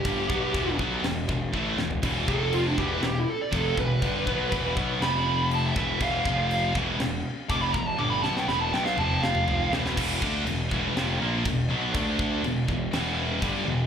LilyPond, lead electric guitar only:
\new Staff \with { instrumentName = "Lead electric guitar" } { \time 4/4 \key e \minor \tempo 4 = 121 g'4. r2 r8 | r8 a'8 f'16 d'16 g'16 b'16 g'16 e'16 a'16 d''16 a'8 b'8~ | b'4. r8 b''4 a''16 e''8. | f''4. r4. d'''16 b''16 ais''16 a''16 |
d'''16 b''16 a''16 g''16 b''16 a''16 g''16 f''16 a''8 f''4 r8 | r1 | r1 | }